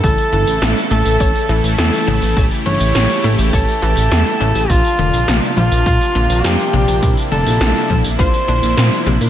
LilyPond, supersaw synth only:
\new Staff \with { instrumentName = "Supersaw synth" } { \time 4/4 \key a \phrygian \tempo 4 = 103 << { a'1 | g'1 | f'1 | e'1 | } \\ { <cis e a e'>1~ | <cis e a e'>1 | <c f bes d'>1~ | <c f bes d'>1 | } >> }